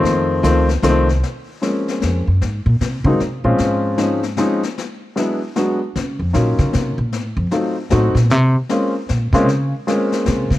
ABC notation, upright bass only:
X:1
M:3/4
L:1/8
Q:"Swing" 1/4=153
K:Bbm
V:1 name="Upright bass" clef=bass
F,,2 D,,2 C,,2 | z4 F,, G,, | A,, B,, C, D, C, B,, | A,,4 z2 |
z6 | D, F,, B,, D, C, B,, | =A,, F,, z2 A,, B,, | C, z3 B,, C, |
D, z3 C, D, |]